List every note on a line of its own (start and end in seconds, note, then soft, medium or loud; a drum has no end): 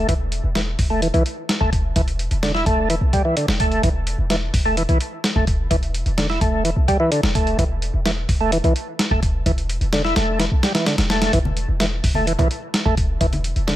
0.09 0.41 E1 loud
0.09 0.14 E3 loud
0.09 kick loud
0.09 closed hi-hat medium
0.32 closed hi-hat medium
0.44 0.76 E1 medium
0.55 0.61 E3 loud
0.55 snare loud
0.55 closed hi-hat medium
0.79 1.11 E1 medium
0.79 kick medium
0.79 open hi-hat medium
0.90 1.01 A3 medium
1.02 1.08 E3 loud
1.02 closed hi-hat medium
1.14 1.24 B1 loud
1.14 1.23 E3 loud
1.14 closed hi-hat soft
1.26 closed hi-hat medium
1.49 snare loud
1.49 closed hi-hat medium
1.61 1.93 E1 loud
1.61 1.70 A3 medium
1.61 kick medium
1.73 kick loud
1.73 closed hi-hat medium
1.96 2.28 E1 loud
1.96 2.01 E3 loud
1.96 kick loud
1.96 closed hi-hat medium
2.08 closed hi-hat soft
2.19 closed hi-hat medium
2.31 2.63 E1 medium
2.31 closed hi-hat soft
2.43 2.52 D3 loud
2.43 snare loud
2.43 closed hi-hat medium
2.55 2.65 E4 medium
2.55 snare soft
2.66 2.98 E1 medium
2.66 2.89 A3 medium
2.66 kick loud
2.66 closed hi-hat medium
2.90 2.95 E3 loud
2.90 closed hi-hat medium
3.01 3.11 B1 loud
3.13 3.22 G3 medium
3.13 kick medium
3.13 closed hi-hat medium
3.25 3.35 E3 loud
3.37 3.46 D3 medium
3.37 closed hi-hat medium
3.48 3.80 E1 medium
3.48 snare loud
3.60 3.82 A3 medium
3.60 kick loud
3.60 closed hi-hat medium
3.72 closed hi-hat soft
3.83 4.15 E1 loud
3.83 3.89 E3 loud
3.83 kick loud
3.83 closed hi-hat medium
4.07 closed hi-hat medium
4.18 4.50 E1 medium
4.30 4.36 E3 loud
4.30 snare loud
4.30 closed hi-hat medium
4.54 4.86 E1 medium
4.54 kick medium
4.54 open hi-hat medium
4.65 4.76 A3 medium
4.77 4.83 E3 loud
4.77 closed hi-hat medium
4.89 4.99 B1 loud
4.89 4.98 E3 loud
4.89 closed hi-hat soft
5.00 closed hi-hat medium
5.24 snare loud
5.24 closed hi-hat medium
5.36 5.68 E1 loud
5.36 5.45 A3 medium
5.36 kick medium
5.47 kick loud
5.47 closed hi-hat medium
5.71 6.03 E1 loud
5.71 5.76 E3 loud
5.71 kick loud
5.71 closed hi-hat medium
5.83 closed hi-hat soft
5.94 closed hi-hat medium
6.06 6.38 E1 medium
6.06 closed hi-hat soft
6.18 6.27 D3 loud
6.18 snare loud
6.18 closed hi-hat medium
6.30 6.40 E4 medium
6.30 snare soft
6.41 6.73 E1 medium
6.41 6.63 A3 medium
6.41 kick loud
6.41 closed hi-hat medium
6.64 6.70 E3 loud
6.64 closed hi-hat medium
6.76 6.86 B1 loud
6.88 6.97 G3 loud
6.88 kick medium
6.88 closed hi-hat medium
7.00 7.10 E3 loud
7.12 7.21 D3 medium
7.12 closed hi-hat medium
7.23 7.55 E1 loud
7.23 snare loud
7.35 7.57 A3 medium
7.35 kick loud
7.35 closed hi-hat medium
7.47 closed hi-hat soft
7.59 7.91 E1 loud
7.59 7.64 E3 loud
7.59 kick loud
7.59 closed hi-hat medium
7.82 closed hi-hat medium
7.94 8.26 E1 medium
8.06 8.11 E3 loud
8.06 snare loud
8.06 closed hi-hat medium
8.29 8.61 E1 medium
8.29 kick loud
8.29 open hi-hat medium
8.41 8.51 A3 medium
8.52 8.58 E3 loud
8.52 closed hi-hat medium
8.64 8.74 B1 loud
8.64 8.73 E3 loud
8.64 closed hi-hat soft
8.76 closed hi-hat medium
8.99 snare loud
8.99 closed hi-hat medium
9.11 9.43 E1 loud
9.11 9.20 A3 medium
9.11 kick medium
9.23 kick loud
9.23 closed hi-hat medium
9.46 9.78 E1 loud
9.46 9.52 E3 loud
9.46 kick loud
9.46 closed hi-hat medium
9.58 closed hi-hat soft
9.69 closed hi-hat medium
9.81 10.13 E1 medium
9.81 closed hi-hat soft
9.93 10.02 D3 loud
9.93 snare loud
9.93 closed hi-hat medium
10.05 10.15 E4 medium
10.05 snare soft
10.16 10.48 E1 medium
10.16 10.39 A3 medium
10.16 snare loud
10.16 closed hi-hat medium
10.39 10.45 E3 loud
10.39 snare loud
10.39 closed hi-hat medium
10.51 10.61 B1 loud
10.63 10.73 G3 loud
10.63 snare loud
10.63 closed hi-hat medium
10.75 10.85 E3 loud
10.75 snare loud
10.75 closed hi-hat medium
10.86 10.96 D3 medium
10.86 snare loud
10.86 closed hi-hat medium
10.98 11.30 E1 medium
10.98 snare loud
10.98 closed hi-hat medium
11.10 11.32 A3 medium
11.10 snare loud
11.10 closed hi-hat medium
11.22 snare loud
11.22 closed hi-hat medium
11.33 11.65 E1 loud
11.33 11.39 E3 loud
11.33 kick loud
11.33 closed hi-hat medium
11.45 high conga medium
11.57 closed hi-hat medium
11.68 12.01 E1 medium
11.80 11.86 E3 loud
11.80 snare loud
11.80 closed hi-hat medium
12.04 12.36 E1 medium
12.04 kick loud
12.04 open hi-hat medium
12.15 12.26 A3 medium
12.15 high conga medium
12.27 12.33 E3 loud
12.27 closed hi-hat medium
12.39 12.49 B1 loud
12.39 12.48 E3 loud
12.39 closed hi-hat soft
12.39 low conga medium
12.51 closed hi-hat medium
12.74 snare loud
12.74 closed hi-hat medium
12.86 13.18 E1 loud
12.86 12.95 A3 medium
12.86 kick loud
12.97 kick loud
12.97 closed hi-hat medium
13.21 13.53 E1 loud
13.21 13.26 E3 loud
13.21 kick loud
13.21 closed hi-hat medium
13.33 closed hi-hat soft
13.33 high conga medium
13.44 closed hi-hat medium
13.56 13.76 E1 medium
13.56 closed hi-hat soft
13.68 13.76 D3 loud
13.68 snare loud
13.68 closed hi-hat medium